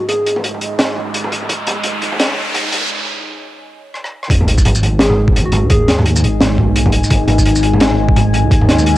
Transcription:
0.00 2.90 G#3 medium
0.00 2.90 D#4 medium
0.00 2.43 D#5 medium
0.00 2.90 G#5 medium
0.00 riser medium
0.09 0.37 G#4 medium
0.09 closed hi-hat medium
0.09 mid tom soft
0.26 closed hi-hat medium
0.36 mid tom medium
0.44 closed hi-hat medium
0.54 mid tom soft
0.61 closed hi-hat medium
0.79 snare loud
0.79 closed hi-hat medium
0.79 mid tom medium
0.96 mid tom medium
1.14 closed hi-hat medium
1.24 mid tom medium
1.32 closed hi-hat medium
1.42 mid tom soft
1.49 kick loud
1.49 closed hi-hat medium
1.67 closed hi-hat medium
1.67 mid tom medium
1.83 closed hi-hat medium
1.83 mid tom soft
2.02 closed hi-hat medium
2.12 mid tom medium
2.19 snare loud
2.19 closed hi-hat medium
2.30 mid tom medium
2.54 closed hi-hat medium
2.54 mid tom medium
2.72 closed hi-hat medium
2.72 mid tom medium
3.94 cross-stick medium
4.04 cross-stick medium
4.23 cross-stick medium
4.30 5.64 G#1 loud
4.30 8.98 G#3 medium
4.30 kick loud
4.30 closed hi-hat medium
4.30 sub drop medium
4.35 8.98 D#4 medium
4.41 mid tom medium
4.48 closed hi-hat medium
4.58 kick medium
4.58 shaker medium
4.65 closed hi-hat medium
4.65 mid tom medium
4.72 8.98 D#5 medium
4.72 shaker medium
4.83 closed hi-hat medium
4.83 mid tom medium
4.99 5.22 G#4 medium
4.99 snare loud
4.99 closed hi-hat loud
5.10 mid tom medium
5.19 8.98 G#5 medium
5.28 kick loud
5.28 mid tom soft
5.29 mid tom soft
5.33 mid tom soft
5.35 closed hi-hat medium
5.35 mid tom soft
5.38 mid tom soft
5.41 mid tom soft
5.46 5.66 F#4 loud
5.52 closed hi-hat medium
5.52 mid tom medium
5.63 6.24 D#2 medium
5.70 5.98 G#4 medium
5.70 kick loud
5.70 closed hi-hat medium
5.70 mid tom medium
5.88 snare medium
5.88 closed hi-hat medium
5.99 mid tom medium
6.06 closed hi-hat medium
6.16 mid tom medium
6.16 shaker medium
6.23 6.57 G#1 medium
6.23 closed hi-hat medium
6.41 snare loud
6.41 closed hi-hat medium
6.41 mid tom medium
6.58 7.02 B1 medium
6.58 kick medium
6.58 mid tom medium
6.76 closed hi-hat medium
6.86 kick loud
6.86 mid tom medium
6.92 closed hi-hat medium
7.04 shaker medium
7.10 8.45 G#1 loud
7.10 kick loud
7.10 closed hi-hat medium
7.10 mid tom soft
7.28 closed hi-hat medium
7.28 mid tom medium
7.38 kick medium
7.38 shaker medium
7.46 closed hi-hat medium
7.46 mid tom medium
7.56 shaker medium
7.63 closed hi-hat medium
7.74 mid tom medium
7.80 snare loud
7.80 closed hi-hat loud
7.91 mid tom medium
8.09 kick loud
8.16 closed hi-hat medium
8.16 mid tom medium
8.33 closed hi-hat medium
8.33 mid tom soft
8.44 8.98 D#2 medium
8.51 kick loud
8.51 closed hi-hat medium
8.61 mid tom medium
8.69 snare medium
8.69 closed hi-hat medium
8.78 mid tom soft
8.78 shaker medium
8.86 closed hi-hat medium

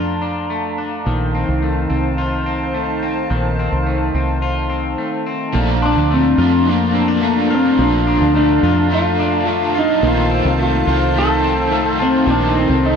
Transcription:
0.00 1.02 F2 medium
0.00 1.06 F3 medium
0.00 0.50 A3 soft
0.00 0.21 D4 soft
0.00 1.02 D4 medium
0.00 2.18 F4 medium
0.00 1.02 F5 medium
0.00 1.02 A5 medium
0.00 1.02 A#5 medium
0.22 0.77 D4 medium
0.50 1.62 A3 medium
0.78 1.12 D4 medium
1.05 1.46 A#1 medium
1.05 3.29 D#3 medium
1.05 5.50 D#4 medium
1.05 5.50 C5 medium
1.05 5.50 F5 medium
1.05 5.50 A5 medium
1.35 1.88 C4 soft
1.49 1.88 C2 medium
1.62 2.74 A3 medium
1.90 3.26 C2 medium
1.90 2.45 C4 soft
2.18 4.42 F4 medium
2.46 3.01 C4 medium
2.74 3.86 A3 soft
3.03 3.58 C4 medium
3.30 3.70 A#1 medium
3.30 5.54 D#3 medium
3.59 4.13 C4 soft
3.72 4.12 C2 medium
3.86 4.98 A3 medium
4.14 4.94 C2 medium
4.14 4.68 C4 soft
4.42 6.38 F4 medium
4.70 5.25 C4 medium
4.98 6.10 A3 soft
5.26 5.60 C4 soft
5.53 5.95 A#1 medium
5.53 6.38 A#2 medium
5.53 6.65 F3 medium
5.53 7.78 F3 medium
5.53 6.42 A3 loud
5.53 9.99 D4 medium
5.53 6.39 D4 medium
5.53 6.37 F4 medium
5.53 12.23 F5 medium
5.53 12.96 A5 medium
5.53 9.99 A#5 medium
5.82 6.94 D4 medium
5.82 6.13 D4 medium
5.82 7.21 C6 medium
5.97 6.36 D2 medium
6.10 7.22 A3 medium
6.10 6.69 C4 medium
6.37 7.75 F2 medium
6.37 6.67 D4 soft
6.37 6.66 F4 medium
6.37 7.50 F4 medium
6.42 6.68 A3 soft
6.66 7.21 F3 medium
6.66 7.55 A#3 loud
6.66 7.24 D4 medium
6.70 7.26 F4 medium
6.94 7.08 C4 medium
7.08 8.06 D4 soft
7.22 7.78 F3 medium
7.22 8.35 A3 medium
7.22 7.79 A3 medium
7.22 7.80 D4 medium
7.27 7.83 F4 medium
7.50 7.81 C4 medium
7.50 8.63 F4 medium
7.76 8.19 A#1 loud
7.76 8.90 A#2 medium
7.76 10.03 F3 medium
7.76 8.89 F3 medium
7.80 8.91 A3 medium
7.80 8.35 D4 medium
7.80 8.92 D4 medium
7.80 8.93 F4 medium
8.07 9.18 D4 medium
8.07 9.46 C6 medium
8.21 8.61 D2 loud
8.35 8.91 A3 medium
8.35 8.93 D4 loud
8.63 9.99 F2 medium
8.63 9.75 F4 medium
8.90 9.45 F3 medium
8.90 9.46 A3 medium
8.90 9.48 A3 medium
8.90 9.47 D4 medium
8.94 9.49 F4 medium
8.94 9.79 F4 loud
9.19 10.09 D4 medium
9.45 10.03 F3 medium
9.45 10.03 A3 medium
9.45 10.59 A3 medium
9.45 10.04 D4 medium
9.50 10.05 F4 medium
9.75 10.06 D#4 loud
9.75 10.87 F4 medium
10.02 10.43 A#1 loud
10.02 10.87 A#2 medium
10.02 10.87 D#3 medium
10.02 12.26 D#3 medium
10.02 10.89 A3 medium
10.02 10.87 C4 medium
10.02 12.96 D#4 medium
10.02 10.85 F4 loud
10.02 12.96 C5 medium
10.07 10.62 F4 loud
10.31 11.43 C4 medium
10.45 10.85 C2 medium
10.59 11.15 A3 medium
10.59 11.19 F4 loud
10.85 12.23 C2 medium
10.85 11.16 C4 soft
10.85 11.14 F4 medium
10.85 11.99 F4 medium
10.90 11.15 A3 soft
11.14 11.69 D#3 medium
11.14 11.71 A3 medium
11.14 11.72 A3 medium
11.14 11.72 C4 medium
11.18 11.73 F4 medium
11.18 12.03 A4 loud
11.44 12.53 C4 medium
11.70 12.27 D#3 medium
11.70 12.83 A3 medium
11.70 12.28 A3 medium
11.70 12.28 C4 medium
11.74 12.31 F4 medium
11.99 12.29 C4 medium
11.99 12.96 F4 medium
11.99 12.96 A5 medium
12.18 12.96 C6 medium
12.25 12.67 A#1 loud
12.25 12.96 A#2 medium
12.25 12.96 D#3 medium
12.25 12.96 D#5 medium
12.29 12.96 A3 medium
12.29 12.96 C4 loud
12.29 12.58 D4 loud
12.29 12.96 F4 medium
12.55 12.96 C4 medium
12.55 12.86 C4 medium
12.69 12.96 C2 medium
12.83 12.96 A3 medium
12.83 12.96 D#4 loud

